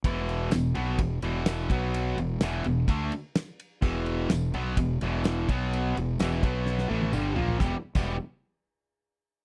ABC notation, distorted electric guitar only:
X:1
M:4/4
L:1/16
Q:1/4=127
K:Em
V:1 name="Distorted electric guitar" clef=bass
[E,,B,,E,]4 [E,,B,,]2 [B,,F,B,]2 [E,,B,,]2 [E,,B,,E,]4 [B,,F,B,]2- | [B,,F,B,]2 [E,,B,,]2 [E,,B,,E,]2 [E,,B,,]2 [D,A,D]2 z6 | [E,,B,,E,]4 [E,,B,,]2 [B,,F,B,]2 [E,,B,,]2 [E,,B,,E,]4 [B,,F,B,]2- | [B,,F,B,]2 [E,,B,,]2 [E,,B,,E,]2 [B,,F,B,]4 [A,,E,A,]2 [G,,D,G,]2 [^A,,=F,^A,]2 |
[E,,B,,E,G,B,G] z2 [E,,B,,E,G,B,G]2 z8 z3 |]